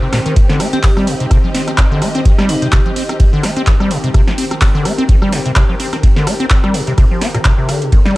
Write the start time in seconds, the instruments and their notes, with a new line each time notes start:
Already playing: analog synth pad D#3 C4 A#4, string section C4 G4 C5
0.02 acid bass C3
0.13 acid bass A#2, cross-stick, snare, open hi-hat, ride
0.26 acid bass D#3, closed hi-hat
0.36 acid bass C3, analog synth pad G4, kick, closed hi-hat, ride
0.49 acid bass D3, string section D#5, snare, ride
0.60 acid bass A#3, cross-stick, open hi-hat, ride
0.73 acid bass C4, vibraphone G4, closed hi-hat
0.83 acid bass D#3, vibraphone G4, kick, snare, clap, closed hi-hat, open hi-hat
0.97 acid bass G3, cross-stick, snare
1.07 acid bass C3, open hi-hat, ride
1.20 acid bass C3, closed hi-hat
1.31 acid bass C3, kick, cross-stick, closed hi-hat, ride
1.44 acid bass F3
1.54 acid bass C4, snare, open hi-hat, ride
1.68 acid bass C4, cross-stick, closed hi-hat
1.78 acid bass C3, kick, snare, clap, closed hi-hat, ride
1.91 acid bass D3
2.02 acid bass A#3, cross-stick, open hi-hat, ride
2.15 acid bass C4, snare, closed hi-hat
2.25 acid bass D#3, kick, closed hi-hat, ride
2.38 acid bass G3, cross-stick, snare
2.49 acid bass C3, vibraphone D#4, open hi-hat, ride
2.62 acid bass C3, vibraphone G4, closed hi-hat
2.72 acid bass C3, kick, cross-stick, snare, clap, closed hi-hat, ride
2.86 acid bass F3, ride
2.96 acid bass C4, open hi-hat, ride
3.09 acid bass C4, cross-stick, snare, closed hi-hat
3.20 acid bass C3, kick, closed hi-hat, ride
3.33 acid bass D3
3.43 acid bass A#3, cross-stick, snare, open hi-hat, ride
3.56 acid bass C4, closed hi-hat, ride
3.67 acid bass D#3, kick, snare, clap, closed hi-hat, ride
3.80 acid bass G3, cross-stick
3.91 acid bass C3, open hi-hat, ride
4.04 acid bass C3, closed hi-hat
4.14 acid bass C3, kick, cross-stick, closed hi-hat, ride
4.27 acid bass F3, string section A#4, snare, ride
4.38 acid bass C4, open hi-hat, ride
4.51 acid bass C4, cross-stick, closed hi-hat
4.61 acid bass C3, kick, snare, clap, closed hi-hat, open hi-hat
4.75 acid bass D3, snare
4.85 acid bass A#3, cross-stick, open hi-hat, ride
4.98 acid bass C4, closed hi-hat
5.09 acid bass D#3, kick, closed hi-hat, ride
5.22 acid bass G3, cross-stick
5.32 acid bass C3, snare, open hi-hat, ride
5.46 acid bass C3, closed hi-hat
5.56 acid bass C3, kick, cross-stick, snare, clap, closed hi-hat, ride
5.69 acid bass F3
5.80 acid bass C4, open hi-hat, ride
5.93 acid bass C4, cross-stick, snare, closed hi-hat
6.03 acid bass C3, kick, closed hi-hat, ride
6.16 acid bass D3, snare
6.27 acid bass A#3, cross-stick, open hi-hat, ride
6.40 acid bass C4, closed hi-hat
6.50 acid bass D#3, kick, snare, clap, closed hi-hat, ride
6.64 acid bass G3, cross-stick, ride
6.74 acid bass C3, open hi-hat, ride
6.87 acid bass C3, snare, closed hi-hat
6.98 acid bass C3, kick, cross-stick, closed hi-hat, ride
7.11 acid bass F3
7.21 acid bass C4, snare, open hi-hat, ride
7.35 acid bass A#2, cross-stick, closed hi-hat, ride
7.45 acid bass C3, kick, snare, clap, closed hi-hat, ride
7.58 acid bass C3
7.69 acid bass D3, cross-stick, open hi-hat, ride
7.82 acid bass C3, closed hi-hat
7.92 acid bass D#3, analog synth pad C5, kick, closed hi-hat, ride
8.05 acid bass G3, string section D#5, snare, ride